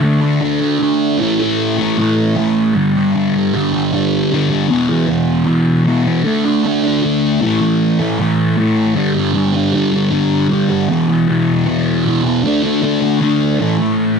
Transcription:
0.01 D3 A3
0.05 D4
0.21 A3 D4
0.41 D3 A3 D4
0.61 A3 D4
0.79 D3 A3 D4
1.18 A2 E3
1.22 A3
1.39 E3 A3
1.78 E3 A3
1.97 A2 E3 A3
2.36 A2 E3 A3
2.74 G2 D3
2.78 G3
2.93 G3
2.98 D3
3.13 G2 D3 G3
3.35 D3 G3
3.54 G2 D3 G3
3.73 D3 G3
3.92 G2 D3 G3
4.31 G2 D3 G3
4.50 D3 G3
4.69 E2 B2 E3
4.89 B2 E3
5.07 E2 B2 E3
5.45 E2 B2 E3
5.84 E2 B2 E3
6.03 B2 E3
6.24 D3 A3 D4
6.45 A3 D4
6.64 D3 A3 D4
6.83 A3 D4
7.02 D3 A3 D4
7.41 A2 E3
7.45 A3
7.61 E3 A3
7.99 E3 A3
8.18 A2 E3 A3
8.57 A2 E3 A3
8.95 G2 D3 G3
9.14 D3 G3
9.33 G2 D3 G3
9.53 D3 G3
9.73 G2 D3 G3
9.92 D3 G3
10.11 G2 D3 G3
10.49 G2 D3
10.53 G3
10.69 D3 G3
10.88 E2 B2 E3
11.07 E3
11.11 B2
11.27 E2 B2 E3
11.66 E2 B2 E3
12.04 E2 B2 E3
12.24 E3
12.28 B2
12.43 D3 A3 D4
12.63 A3 D4
12.82 D3 A3 D4
13.01 A3 D4
13.20 D3 A3 D4
13.59 A2 E3 A3
13.78 E3 A3

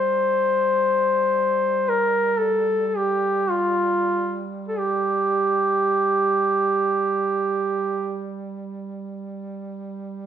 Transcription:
Already playing: G3 C5
1.89 A#4
2.38 A4
2.87 A4
2.97 G4
3.50 F4
4.68 A4
4.79 G4

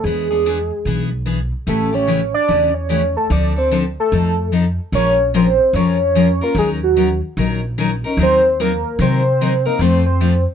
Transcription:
0.04 E2 E3 B3 D4 G#4
0.30 B3 D4 G#4
0.45 E3 B3 D4 G#4
0.85 B1 E3 B3 D4 G#4
1.26 E3 B3 D4 G#4
1.67 A1 C#3 E3 A3 C#4 G4 A4
1.93 A3 C#4 G4 C#5
2.07 C#3 E3 A3 C#4 G4
2.34 D5
2.48 E2 C#3 E3 A3 C#4 G4
2.74 C#5
2.89 C#3 E3 A3 C#4 G4
3.17 A4
3.30 D2 D3 F3 C4 D4 A4 D5
3.56 C4 D4 A4 C5
3.71 D3 F3 C4 D4 A4
4.00 A4
4.12 F2 F3 C4 D#4 A4
4.52 F3 C4 D#4 A4
4.92 A#1 F3 G#3 C#4 F4 A#4 C#5
5.34 F3 G#3 C#4 F4 A#4 C5
5.73 F2 F3 G#3 C#4 F4 A#4 C#5
6.15 F3 G#3 C#4 F4 A#4
6.41 C#4 F4 A#4
6.55 D#2 D#3 F#3 C#4 D#4 G#4 A#4
6.83 F#4
6.96 D#3 F#3 C#4 D#4 A#4
7.37 A#1 D#3 F#3 C#4 D#4 A#4
7.78 D#3 F#3 C#4 D#4 A#4
8.04 C#4 D#4 A#4
8.17 D#2 D#3 F#3 C4 D#4 A#4
8.23 C5
8.60 D#3 F#3 C4 D#4 A#4
8.99 C3 D#3 F#3 C4 D#4 A#4 C5
9.41 D#3 F#3 C4 D#4 A#4
9.65 C4 D#4 A#4
9.79 F2 F3 A3 C4 F4 A4 C5
10.06 C5
10.21 F3 A3 C4 F4 A4

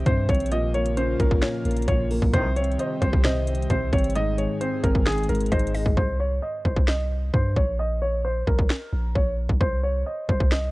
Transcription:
Already playing: C3 D#3 G3 C4 G4 C5
0.06 G2 C3 C5, kick, closed hi-hat
0.29 A#1 C4 C#5, kick, closed hi-hat
0.35 closed hi-hat
0.40 closed hi-hat
0.46 closed hi-hat
0.52 A#2 C#3 F3 A#3 F4 D#5, closed hi-hat
0.74 A#3 C#5, closed hi-hat
0.86 closed hi-hat
0.97 C#4 C5, closed hi-hat
1.20 A#1 C#4 A#4, kick, closed hi-hat
1.31 kick
1.42 A#2 C#5, finger snap, snare, closed hi-hat
1.65 A#1 A#3, closed hi-hat
1.71 closed hi-hat
1.77 closed hi-hat
1.82 closed hi-hat
1.88 A#1 A#2 C#5, kick, closed hi-hat
2.11 A#3, open hi-hat
2.22 A#1, kick
2.33 C2 G2 C3 D#3 G3 C4 G4 C5, kick, closed hi-hat
2.56 C4 C#5, closed hi-hat
2.64 closed hi-hat
2.71 closed hi-hat
2.79 C5 D#5, closed hi-hat
3.01 C2 C5, kick, closed hi-hat
3.13 kick
3.24 C3 C5 D#5, finger snap, snare, closed hi-hat
3.47 C4, closed hi-hat
3.55 closed hi-hat
3.62 closed hi-hat
3.70 C2 C3 C5, kick, closed hi-hat
3.92 G#1 C4 C#5, kick, closed hi-hat
3.98 closed hi-hat
4.04 closed hi-hat
4.10 closed hi-hat
4.15 G#2 D#3 G#3 G#4 D#5, closed hi-hat
4.38 G#3 C#5, closed hi-hat
4.61 C4 C5, closed hi-hat
4.83 G#1 C4 A#4, kick, closed hi-hat
4.95 kick
5.06 G#2 G#4, finger snap, snare, closed hi-hat
5.12 closed hi-hat
5.18 closed hi-hat
5.23 closed hi-hat
5.29 G#1 G#3 A#4, closed hi-hat
5.35 closed hi-hat
5.40 closed hi-hat
5.46 closed hi-hat
5.52 G#1 G#2 C5 D#5, kick, closed hi-hat
5.59 closed hi-hat
5.67 closed hi-hat
5.74 G#3 D#5, open hi-hat
5.86 G#1, kick
5.97 C2 C5, kick
6.20 C#5
6.43 D#5
6.65 C2 C5, kick
6.77 kick
6.88 D#5, finger snap, snare
7.33 G2 C5, kick
7.56 A#1 C#5, kick
7.79 D#5
8.02 C#5
8.24 C5
8.47 A#1 A#4, kick
8.58 kick
8.70 finger snap, snare
8.93 A#1
9.15 A#1 C#5, kick
9.49 A#1, kick
9.61 C2 C5, kick
9.84 C#5
10.06 D#5
10.29 C2 C5, kick
10.40 kick
10.52 D#5, finger snap, snare

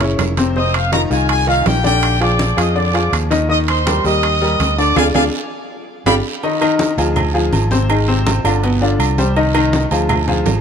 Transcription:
Already playing: F#1
0.00 C#3 C#4 E4, high conga, high timbale
0.19 F1, high conga, high timbale, low timbale, short guiro, claves
0.37 C3 C4 C5, high conga, high timbale, short guiro
0.56 C3 C4 C5 D#5 D#6, high conga, long guiro
0.74 F5, high conga, high timbale, claves
0.92 D#3 D#4 F4 A#4 A#5, high conga, high timbale, short guiro
1.10 C2 D#3 D#4 F4 G#4 G#5, high conga, short guiro
1.29 G#4 G#5, high conga, high timbale, long guiro, claves
1.47 D#3 D#4 F4 F5, high conga
1.66 A#1 G4 G5, high conga, high timbale, low timbale, short guiro
1.84 D3 D4 G4 D5 G5, high conga, short guiro
2.03 high conga, high timbale, long guiro, claves
2.21 F3 F4 G#4 D5 D6, high conga, high timbale
2.39 high conga, short guiro
2.57 F2 F3 F4 G#4 D#5 D#6, high conga, high timbale, short guiro, claves
2.75 D3 D4 D5 D6, high conga, long guiro
2.94 F3 F4 G#4, high conga, high timbale
3.13 D#2, high conga, high timbale, short guiro, claves
3.30 D#3 D#4 D#5, high conga, high timbale, short guiro
3.49 D#3 D#4 D#5 D#6, high conga, long guiro
3.68 C5 C6, high conga, high timbale, claves
3.86 G3 G4 A#4, high conga, high timbale, short guiro
4.04 D#2 G3 G4 A#4 D#5 D#6, high conga, short guiro
4.23 high conga, high timbale, long guiro, claves
4.41 G3 G4 A#4, high conga
4.60 D2, high conga, high timbale, short guiro
4.78 D3 D4 D5 D6, short guiro
4.96 D2 D4 F4 G#4 D5 F5 G#5, high conga, high timbale, long guiro, claves
5.14 D2 D4 F4 G#4 D5 F5 G#5, high conga, high timbale, long guiro, claves
6.06 G1 D4 F4 G4 F5 G5 B5, high conga, high timbale, long guiro, claves
6.43 D#3 D#4 D#5, high conga, low agogo, long guiro
6.61 D#3 D#4 D#5, high conga, low agogo, claves
6.79 high conga, short guiro
6.98 D2 F3 F4 G#4, high conga, low agogo, short guiro
7.16 high conga, low conga, low agogo, long guiro, claves
7.34 F3 F4 G#4, high conga
7.53 G#1, high conga, low agogo, short guiro
7.71 C3 C4 C5, high conga, short guiro
7.90 D#3 D#4 G#4, high conga, low agogo, long guiro, claves
8.08 C3 C4 C5, high conga
8.26 high conga, low agogo, short guiro
8.44 G1 D3 D4 F4, high conga, low agogo, short guiro, claves
8.63 B2 B3 B4, high conga, low agogo, long guiro
8.81 D3 D4 F4, high conga
8.99 C2, high conga, low agogo, short guiro, claves
9.18 G3 G4 C5, high conga, short guiro
9.36 D#3 D#4 D#5, high conga, low agogo, long guiro
9.54 D#3 D#4 D#5, high conga, low agogo, claves
9.73 high conga, short guiro
9.91 D2 F3 F4 G#4, high conga, low agogo, short guiro
10.09 high conga, low conga, low agogo, long guiro, claves
10.28 F3 F4 G#4, high conga, low conga
10.45 G#1, high conga, low timbale, low agogo, short guiro

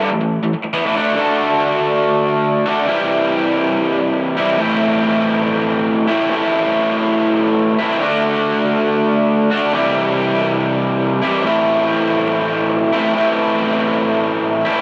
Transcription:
0.12 A2 E3
0.21 A2 E3
0.43 A2 E3
0.54 muted overdriven electric guitar stroke
0.64 muted overdriven electric guitar stroke
0.73 E3 B3
0.86 A2 E3
0.96 D3 A3 D4
1.16 D3 A3 D4 F#4
1.20 A4
2.66 D3 A3 D4 F#4 A4
2.86 C3 E3 G3 C4 E4
4.37 C3 E3 G3 C4 E4
4.57 A2 E3 A3 C4 E4
6.08 A2 E3 A3 C4 E4
6.30 A2 E3 A3 C4 E4
7.78 A2 E3 A3 C4 E4
7.99 D3 A3 D4 F#4
9.50 A3 D4 F#4
9.54 D3
9.72 C3 E3 G3 C4 E4
11.22 C3 E3 G3 C4 E4
11.43 A2 E3 A3 C4 E4
12.92 A2 E3 A3 C4 E4
13.14 A2 E3 A3 C4 E4
14.65 A2 E3 A3 C4 E4

